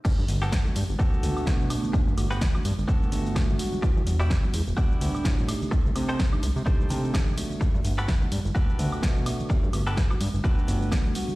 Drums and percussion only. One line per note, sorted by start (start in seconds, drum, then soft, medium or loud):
0.05 kick loud
0.05 tambourine soft
0.05 crash loud
0.05 shaker soft
0.19 shaker soft
0.28 open hi-hat loud
0.28 tambourine medium
0.28 shaker medium
0.42 tambourine medium
0.42 shaker soft
0.52 kick loud
0.52 snare loud
0.52 shaker soft
0.65 low conga medium
0.65 shaker soft
0.75 open hi-hat loud
0.75 tambourine loud
0.75 high conga loud
0.75 shaker medium
0.90 tambourine medium
0.90 shaker soft
1.00 kick loud
1.00 shaker soft
1.13 shaker soft
1.23 open hi-hat loud
1.23 tambourine loud
1.23 high conga medium
1.23 low conga medium
1.23 shaker medium
1.36 tambourine medium
1.36 high woodblock medium
1.36 shaker soft
1.46 kick loud
1.46 snare loud
1.46 tambourine soft
1.46 shaker soft
1.61 shaker soft
1.70 open hi-hat medium
1.70 tambourine medium
1.70 high woodblock medium
1.70 shaker medium
1.84 tambourine soft
1.84 low conga medium
1.84 shaker soft
1.94 kick loud
1.94 tambourine soft
1.94 shaker soft
2.08 shaker soft
2.18 open hi-hat loud
2.18 tambourine medium
2.18 high woodblock medium
2.18 shaker medium
2.31 tambourine medium
2.31 shaker soft
2.41 kick loud
2.41 snare loud
2.41 tambourine soft
2.41 shaker soft
2.55 low conga medium
2.55 high woodblock medium
2.55 shaker soft
2.65 open hi-hat medium
2.65 tambourine medium
2.65 high conga loud
2.65 shaker medium
2.79 tambourine medium
2.79 shaker soft
2.89 kick loud
2.89 tambourine soft
2.89 shaker soft
3.02 high conga medium
3.02 shaker soft
3.12 open hi-hat loud
3.12 tambourine medium
3.12 low conga medium
3.12 shaker medium
3.26 tambourine medium
3.26 shaker soft
3.36 kick loud
3.36 snare loud
3.36 high woodblock medium
3.36 shaker soft
3.50 shaker soft
3.59 open hi-hat loud
3.59 tambourine medium
3.59 high conga loud
3.59 shaker medium
3.72 tambourine soft
3.72 high conga medium
3.72 low conga medium
3.72 shaker soft
3.83 kick loud
3.83 tambourine soft
3.83 shaker soft
3.97 shaker soft
4.07 open hi-hat loud
4.07 tambourine medium
4.07 shaker medium
4.21 tambourine soft
4.21 shaker soft
4.30 kick loud
4.30 snare loud
4.30 shaker soft
4.43 low conga medium
4.43 shaker soft
4.54 open hi-hat loud
4.54 tambourine medium
4.54 high conga loud
4.54 shaker medium
4.67 tambourine medium
4.67 shaker soft
4.78 kick loud
4.78 tambourine soft
4.78 shaker soft
4.92 shaker soft
5.01 open hi-hat loud
5.01 tambourine loud
5.01 high conga medium
5.01 low conga medium
5.01 shaker medium
5.15 tambourine soft
5.15 high woodblock medium
5.15 shaker soft
5.24 kick loud
5.24 snare loud
5.24 tambourine soft
5.24 shaker soft
5.39 shaker soft
5.49 open hi-hat loud
5.49 tambourine medium
5.49 high woodblock medium
5.49 shaker medium
5.62 tambourine soft
5.62 low conga medium
5.62 shaker soft
5.72 kick loud
5.72 tambourine soft
5.72 shaker soft
5.86 shaker soft
5.96 open hi-hat loud
5.96 tambourine medium
5.96 high woodblock medium
5.96 shaker medium
6.09 tambourine soft
6.09 shaker soft
6.19 kick loud
6.19 snare loud
6.19 shaker soft
6.33 low conga medium
6.33 high woodblock medium
6.33 shaker soft
6.43 open hi-hat medium
6.43 tambourine medium
6.43 high conga medium
6.43 shaker medium
6.56 tambourine medium
6.56 shaker soft
6.66 kick loud
6.66 tambourine soft
6.66 shaker soft
6.80 high conga medium
6.80 shaker soft
6.89 open hi-hat loud
6.89 tambourine medium
6.89 low conga medium
6.89 shaker medium
7.04 tambourine soft
7.04 shaker soft
7.14 kick loud
7.14 snare loud
7.14 high woodblock medium
7.14 shaker soft
7.28 shaker soft
7.37 open hi-hat loud
7.37 tambourine medium
7.37 high conga medium
7.37 shaker medium
7.50 tambourine soft
7.50 high conga medium
7.50 low conga medium
7.50 shaker soft
7.61 kick loud
7.61 tambourine soft
7.61 shaker soft
7.75 shaker soft
7.84 open hi-hat loud
7.84 tambourine medium
7.84 shaker medium
7.98 tambourine medium
7.98 shaker soft
8.08 kick loud
8.08 snare loud
8.08 shaker soft
8.22 low conga medium
8.22 shaker soft
8.32 open hi-hat medium
8.32 tambourine medium
8.32 high conga medium
8.32 shaker medium
8.45 tambourine soft
8.45 shaker soft
8.55 kick loud
8.55 shaker soft
8.69 shaker soft
8.79 open hi-hat loud
8.79 tambourine medium
8.79 high conga medium
8.79 low conga medium
8.79 shaker medium
8.93 tambourine soft
8.93 high woodblock medium
8.93 shaker soft
9.03 kick loud
9.03 snare loud
9.03 shaker soft
9.16 shaker soft
9.26 open hi-hat medium
9.26 tambourine medium
9.26 high woodblock medium
9.26 shaker medium
9.40 tambourine soft
9.40 low conga medium
9.40 shaker soft
9.50 kick loud
9.50 tambourine soft
9.50 shaker soft
9.64 shaker soft
9.73 open hi-hat loud
9.73 tambourine medium
9.73 high woodblock medium
9.73 shaker medium
9.87 tambourine soft
9.87 shaker soft
9.97 kick loud
9.97 snare loud
9.97 shaker soft
10.11 low conga medium
10.11 high woodblock medium
10.11 shaker soft
10.21 open hi-hat medium
10.21 tambourine medium
10.21 high conga medium
10.21 shaker medium
10.34 tambourine soft
10.34 shaker soft
10.44 kick loud
10.44 shaker soft
10.58 high conga medium
10.58 shaker soft
10.68 open hi-hat loud
10.68 tambourine medium
10.68 low conga medium
10.68 shaker medium
10.82 tambourine soft
10.82 shaker soft
10.92 kick loud
10.92 snare loud
10.92 high woodblock medium
10.92 shaker soft
11.06 shaker soft
11.14 open hi-hat medium
11.14 tambourine medium
11.14 high conga medium
11.14 shaker medium
11.28 tambourine soft
11.28 high conga medium
11.28 low conga medium
11.28 shaker soft